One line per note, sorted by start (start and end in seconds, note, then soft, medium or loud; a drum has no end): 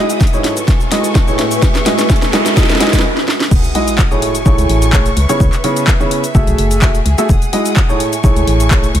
0.00 0.18 G#3 medium
0.00 0.18 E4 medium
0.00 0.18 F#4 medium
0.00 0.43 G#4 medium
0.00 3.04 B4 medium
0.00 0.18 D#5 medium
0.00 0.43 E5 medium
0.00 0.44 E5 medium
0.00 0.43 F#5 medium
0.00 0.44 G#5 medium
0.00 0.43 D#6 medium
0.00 riser medium
0.10 closed hi-hat soft
0.10 shaker medium
0.21 kick loud
0.21 snare medium
0.21 closed hi-hat soft
0.21 shaker soft
0.27 closed hi-hat medium
0.33 0.54 G#2 medium
0.33 0.54 G#3 medium
0.33 0.54 E4 medium
0.33 0.54 G#4 medium
0.33 0.54 C#5 medium
0.33 shaker soft
0.44 1.38 A4 medium
0.44 1.38 G#5 medium
0.44 2.55 C#6 loud
0.44 snare medium
0.44 open hi-hat loud
0.57 3.04 G#5 loud
0.57 closed hi-hat soft
0.57 shaker medium
0.64 3.04 E5 loud
0.68 kick loud
0.68 snare medium
0.68 closed hi-hat medium
0.68 shaker medium
0.81 shaker soft
0.91 1.13 G#3 medium
0.91 1.12 E4 medium
0.91 1.13 F#4 medium
0.91 1.12 D#5 medium
0.91 snare medium
0.91 open hi-hat loud
1.04 closed hi-hat soft
1.04 shaker medium
1.15 kick loud
1.15 snare medium
1.15 closed hi-hat medium
1.15 shaker medium
1.28 1.48 A2 medium
1.28 1.48 A3 medium
1.28 1.48 E4 medium
1.28 1.48 G#4 medium
1.28 1.48 C#5 medium
1.28 shaker soft
1.39 2.95 C#4 medium
1.39 2.56 B4 medium
1.39 2.56 E5 medium
1.39 snare medium
1.39 open hi-hat loud
1.51 closed hi-hat medium
1.51 shaker medium
1.62 kick loud
1.62 snare medium
1.62 closed hi-hat medium
1.62 noise sweep medium
1.62 shaker soft
1.75 snare medium
1.75 shaker soft
1.86 2.07 G#3 medium
1.86 2.07 E4 medium
1.86 2.07 F#4 medium
1.86 2.07 D#5 medium
1.86 snare medium
1.86 open hi-hat loud
1.99 snare medium
1.99 closed hi-hat soft
1.99 shaker medium
2.10 kick loud
2.10 snare medium
2.10 closed hi-hat soft
2.10 shaker medium
2.16 closed hi-hat medium
2.22 snare medium
2.22 shaker soft
2.33 2.54 G#3 medium
2.33 2.54 E4 medium
2.33 2.54 F#4 medium
2.33 2.54 D#5 medium
2.33 snare loud
2.33 open hi-hat loud
2.46 snare medium
2.46 closed hi-hat soft
2.46 shaker medium
2.57 2.78 G#3 medium
2.57 2.78 E4 medium
2.57 2.78 F#4 medium
2.57 3.04 A4 medium
2.57 2.78 D#5 medium
2.57 3.04 F#5 medium
2.57 3.04 G#5 medium
2.57 3.04 E6 medium
2.57 kick loud
2.57 snare loud
2.57 closed hi-hat medium
2.57 shaker medium
2.63 snare medium
2.69 snare medium
2.69 shaker soft
2.75 snare medium
2.80 3.01 G#3 medium
2.80 3.01 E4 medium
2.80 3.01 F#4 medium
2.80 3.01 D#5 loud
2.80 snare loud
2.80 open hi-hat loud
2.87 snare medium
2.93 kick medium
2.93 snare medium
2.93 closed hi-hat soft
2.93 shaker medium
2.99 snare medium
3.17 snare medium
3.28 snare medium
3.40 snare medium
3.51 3.61 E1 loud
3.51 4.21 G#4 medium
3.51 4.21 F#5 medium
3.51 4.21 D#6 medium
3.51 kick loud
3.51 crash medium
3.51 sub drop medium
3.51 shaker medium
3.64 closed hi-hat soft
3.64 shaker soft
3.75 3.96 G#3 medium
3.75 3.96 E4 medium
3.75 3.96 F#4 medium
3.75 3.96 D#5 medium
3.75 open hi-hat loud
3.88 closed hi-hat medium
3.88 shaker medium
3.98 kick loud
3.98 clap loud
3.98 shaker medium
4.11 4.32 A2 medium
4.11 4.32 A3 medium
4.11 4.32 E4 medium
4.11 4.32 G#4 medium
4.11 4.32 C#5 medium
4.11 shaker soft
4.22 5.16 A3 medium
4.22 5.16 G#5 medium
4.22 6.33 C#6 medium
4.22 open hi-hat medium
4.35 closed hi-hat medium
4.35 shaker medium
4.46 4.55 A1 loud
4.46 4.90 A2 medium
4.46 4.90 A3 medium
4.46 4.90 E4 medium
4.46 4.90 G#4 medium
4.46 4.90 C#5 loud
4.46 kick loud
4.46 shaker medium
4.58 4.67 C#2 loud
4.58 closed hi-hat medium
4.58 shaker soft
4.70 5.12 A1 medium
4.70 open hi-hat loud
4.82 closed hi-hat medium
4.82 shaker medium
4.93 5.07 A3 medium
4.93 5.07 E4 medium
4.93 5.07 G#4 medium
4.93 5.07 C#5 medium
4.93 kick loud
4.93 clap loud
4.93 shaker medium
5.06 closed hi-hat medium
5.06 shaker soft
5.17 5.26 C#2 medium
5.17 6.34 B4 medium
5.17 7.27 E5 medium
5.17 open hi-hat medium
5.29 5.42 C#3 medium
5.29 5.42 B3 medium
5.29 5.42 E4 medium
5.29 5.42 G#4 medium
5.29 5.42 C#5 loud
5.29 closed hi-hat medium
5.29 shaker medium
5.40 5.50 C#2 loud
5.40 kick loud
5.40 shaker soft
5.53 clap soft
5.53 closed hi-hat soft
5.53 shaker soft
5.64 5.85 C#3 medium
5.64 5.85 B3 medium
5.64 5.85 E4 medium
5.64 5.85 G#4 medium
5.64 5.85 C#5 medium
5.64 open hi-hat loud
5.77 closed hi-hat medium
5.77 shaker medium
5.87 kick loud
5.87 clap loud
5.87 shaker medium
6.00 6.21 C#3 medium
6.00 6.21 B3 medium
6.00 6.21 E4 medium
6.00 6.21 G#4 medium
6.00 6.21 C#5 medium
6.00 shaker soft
6.11 open hi-hat loud
6.24 closed hi-hat medium
6.24 shaker medium
6.35 6.44 F#1 loud
6.35 6.79 A3 medium
6.35 6.79 F#4 medium
6.35 7.98 G#4 medium
6.35 6.79 G#4 medium
6.35 6.79 E5 loud
6.35 kick loud
6.35 shaker medium
6.47 6.56 B1 loud
6.47 closed hi-hat medium
6.47 shaker soft
6.58 7.01 F#1 medium
6.58 open hi-hat loud
6.71 closed hi-hat medium
6.71 shaker medium
6.82 6.96 A3 medium
6.82 6.96 F#4 medium
6.82 6.96 G#4 medium
6.82 6.96 E5 loud
6.82 kick loud
6.82 clap loud
6.82 shaker medium
6.95 closed hi-hat medium
6.95 shaker soft
7.06 7.15 C#2 medium
7.06 open hi-hat medium
7.18 7.28 A3 loud
7.18 7.28 F#4 medium
7.18 7.28 G#4 medium
7.18 7.28 E5 loud
7.18 closed hi-hat medium
7.18 shaker medium
7.29 7.39 E1 loud
7.29 7.99 F#5 medium
7.29 7.99 D#6 medium
7.29 kick loud
7.29 shaker medium
7.42 closed hi-hat soft
7.42 shaker soft
7.53 7.74 G#3 medium
7.53 7.74 E4 medium
7.53 7.74 F#4 medium
7.53 7.74 D#5 medium
7.53 open hi-hat loud
7.66 closed hi-hat medium
7.66 shaker medium
7.76 kick loud
7.76 clap loud
7.76 shaker medium
7.89 8.10 A2 medium
7.89 8.10 A3 medium
7.89 8.10 E4 medium
7.89 8.10 G#4 medium
7.89 8.10 C#5 medium
7.89 shaker soft
8.00 8.94 A3 medium
8.00 8.94 G#5 medium
8.00 9.00 C#6 medium
8.00 open hi-hat loud
8.13 closed hi-hat medium
8.13 shaker medium
8.24 8.33 A1 loud
8.24 8.68 A2 medium
8.24 8.68 A3 medium
8.24 8.68 E4 medium
8.24 8.68 G#4 medium
8.24 8.68 C#5 loud
8.24 kick loud
8.24 shaker medium
8.36 8.45 C#2 medium
8.36 closed hi-hat medium
8.36 shaker soft
8.47 8.90 A1 medium
8.47 open hi-hat loud
8.60 closed hi-hat medium
8.60 shaker medium
8.71 8.85 A3 medium
8.71 8.85 E4 medium
8.71 8.85 G#4 medium
8.71 8.85 C#5 medium
8.71 kick loud
8.71 clap loud
8.71 shaker medium
8.84 closed hi-hat medium
8.84 shaker soft
8.95 9.00 C#2 medium
8.95 9.00 B4 medium
8.95 9.00 E5 medium
8.95 open hi-hat loud